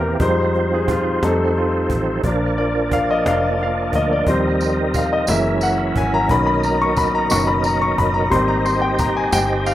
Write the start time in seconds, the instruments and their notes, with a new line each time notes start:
Already playing: fingered electric bass E2, grand piano E3 A#3 D4 A#4 C5 D5 E5, tonewheel organ E3 A#3 C4 G4 A#4
0.20 fingered electric bass F2, tonewheel organ F3 D#4 F4 C5, grand piano G3 G#3 D#4 C5, cajon bass
0.54 cajon slap
0.74 grand piano G#4
0.88 grand piano F4, cajon bass
1.23 fingered electric bass F2, grand piano G3 A3 D#4 A4, tonewheel organ A4, cajon slap
1.55 grand piano F4, cajon slap
1.90 fingered electric bass A1, cajon bass
2.24 fingered electric bass A#1, tonewheel organ F3 A#3 D4 A#4 D5, grand piano F3 A#3 D4, cajon bass
2.58 grand piano D5, cajon slap
2.91 grand piano F5, cajon bass, cajon slap
3.11 grand piano D#5
3.25 fingered electric bass F1, grand piano F3 A#3 D4 F5, cajon slap
3.58 cajon slap
3.63 grand piano F5
3.93 fingered electric bass D2, grand piano D#5, cajon bass
4.13 grand piano D5
4.27 fingered electric bass D#2, grand piano F3 G3 C4 C5, tonewheel organ G3 C4 D#4 D#5, cajon bass
4.61 cajon slap, tambourine
4.94 grand piano F5, cajon bass, tambourine
5.13 grand piano D#5
5.27 fingered electric bass F#1, grand piano E3 G#3 A#3 E5, tonewheel organ F#3 C#4 E4 A#4 E5, cajon slap, tambourine
5.61 grand piano F#5, tambourine
5.96 fingered electric bass G#1, grand piano G#5, cajon bass
6.14 grand piano A#5
6.29 fingered electric bass B1, tonewheel organ B2 D#4 A#4 D#5, grand piano D#3 A#3 C#4 B5, cajon bass
6.47 grand piano B5
6.63 grand piano A#5, tambourine
6.82 grand piano C#6
6.97 grand piano B5, cajon bass, cajon slap, tambourine
7.15 grand piano A#5
7.30 fingered electric bass F#1, grand piano D#3 A#3 C#4 C#6, cajon slap, tambourine
7.47 grand piano B5
7.64 grand piano A#5, tambourine
7.82 grand piano C#6
7.98 fingered electric bass F#1, grand piano B5, cajon bass
8.14 grand piano A#5
8.30 fingered electric bass G#1, grand piano G3 A#3 C4 C6, tonewheel organ C4 G4 C5, cajon bass
8.48 grand piano A#5
8.66 grand piano C6, cajon slap, tambourine
8.82 grand piano G5
8.98 grand piano A#5, cajon bass, tambourine
9.17 grand piano G#5
9.32 fingered electric bass G1, grand piano G5, cajon slap, tambourine
9.65 grand piano F5, cajon slap, tambourine